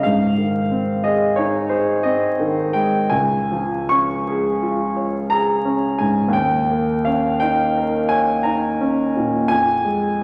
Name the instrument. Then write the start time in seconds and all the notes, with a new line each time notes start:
grand piano
0.03 G#2 F5
0.38 D#3
0.71 C4
1.04 G#4 D#5
1.36 D#4 C#5
1.69 G#4 C5
2.03 C4 D#5
2.39 D#3
2.73 G#3 G5
3.10 C#2 G#5
3.51 F3
3.89 C#4 C#6
4.28 G#4
4.63 F4
4.97 C#5
5.30 G#4 A#5
5.65 C#4
5.98 G#2 G#5
6.28 D#2
6.33 G5
6.71 A#3
7.05 C#4 F5
7.40 D#4 G5
7.77 A#4
8.09 C#5 G#5
8.43 D#4 A#5
8.81 C#4
9.17 A#2
9.48 F2 G#5
9.85 G#3